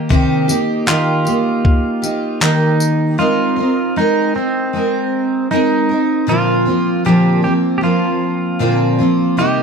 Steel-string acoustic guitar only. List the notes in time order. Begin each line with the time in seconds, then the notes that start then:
Already playing: A#3 D#4 G4
0.09 C3 D#3 A#3 D#4 G4
0.48 A#3 D#4 G4
0.86 D#3 A#3 D#4 G4
1.25 A#3 D#4 G4
2.02 A#3 D#4 G4
2.40 D#3 A#3 D#4 G4
3.18 G#3 C4 D#4 A#4
3.56 C4 D#4 A#4
3.96 G#3 C4 D#4 A#4
4.35 C4 D#4 A#4
4.73 G#3 C4 D#4 A#4
5.51 G#3 C4 D#4 A#4
5.89 C4 D#4 A#4
6.27 A#2 D3 F3 A#3 C4 F4
6.65 F3 A#3 C4 F4
7.05 A#2 D3 F3 A#3 C4 F4
7.42 F3 A#3 C4 F4
7.81 F3 A#3 C4 F4
8.59 A#2 D3 F3 A#3 C4 F4
8.98 A#3 C4 F4
9.02 F3
9.37 C3 G3 A#3 D#4 A#4